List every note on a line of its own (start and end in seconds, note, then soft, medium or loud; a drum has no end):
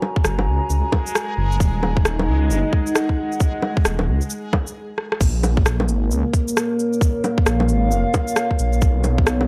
0.00 4.76 G#3 medium
0.00 2.79 F#4 medium
0.00 4.76 G#4 medium
0.00 2.70 C#5 medium
0.00 2.48 G#5 medium
0.00 4.76 A#5 medium
0.00 low bongo soft
0.16 kick medium
0.24 0.48 F#1 medium
0.24 cross-stick medium
0.24 shaker medium
0.39 low bongo medium
0.47 0.60 C#2 loud
0.70 0.82 C#2 loud
0.70 shaker medium
0.92 kick medium
0.92 low bongo medium
1.07 shaker medium
1.15 cross-stick loud
1.15 shaker medium
1.37 1.59 F#1 medium
1.52 shaker soft
1.60 2.04 D#1 medium
1.60 4.76 D#4 medium
1.60 kick loud
1.60 shaker medium
1.74 4.76 D#5 medium
1.83 low bongo medium
1.97 kick loud
2.05 2.29 D#1 medium
2.05 cross-stick loud
2.05 shaker medium
2.19 low bongo medium
2.27 2.51 C#2 loud
2.50 2.63 F#1 medium
2.50 4.76 F#5 medium
2.50 shaker medium
2.73 kick medium
2.87 shaker medium
2.95 cross-stick loud
2.95 shaker medium
3.09 kick medium
3.32 shaker soft
3.40 kick loud
3.40 shaker medium
3.62 low bongo medium
3.77 kick loud
3.85 4.10 D#1 medium
3.85 cross-stick loud
3.85 shaker medium
3.99 low bongo medium
4.08 4.21 C#2 medium
4.21 shaker soft
4.30 shaker medium
4.53 kick loud
4.53 low bongo medium
4.67 shaker medium
4.98 cross-stick medium
5.12 cross-stick medium
5.20 5.65 A#1 medium
5.20 8.82 A#3 medium
5.20 kick loud
5.20 crash loud
5.20 shaker medium
5.43 low bongo medium
5.43 cabasa medium
5.50 8.82 A#4 medium
5.57 kick loud
5.66 5.90 A#1 medium
5.66 cross-stick loud
5.66 shaker medium
5.80 low bongo medium
5.88 6.12 G#1 loud
5.88 cabasa medium
6.10 6.23 C#2 medium
6.10 shaker medium
6.31 9.47 C#5 medium
6.31 kick loud
6.31 cabasa medium
6.48 shaker medium
6.57 cross-stick loud
6.57 shaker medium
6.79 cabasa medium
6.84 9.47 F5 medium
6.93 shaker soft
7.01 kick loud
7.01 shaker medium
7.24 low bongo medium
7.24 cabasa medium
7.38 kick loud
7.46 7.70 A#1 medium
7.46 cross-stick loud
7.46 shaker medium
7.60 low bongo medium
7.69 7.93 G#1 medium
7.69 cabasa medium
7.91 8.04 F1 loud
7.91 shaker medium
8.14 kick loud
8.14 low bongo medium
8.14 cabasa medium
8.28 shaker medium
8.36 cross-stick loud
8.36 shaker medium
8.51 kick medium
8.59 8.81 A#1 medium
8.59 cabasa medium
8.73 shaker soft
8.81 9.26 B1 medium
8.81 9.47 B3 medium
8.81 kick loud
8.81 shaker medium
9.04 low bongo soft
9.04 cabasa medium
9.18 kick loud
9.27 9.47 B1 medium
9.27 cross-stick loud
9.27 shaker medium
9.41 low bongo medium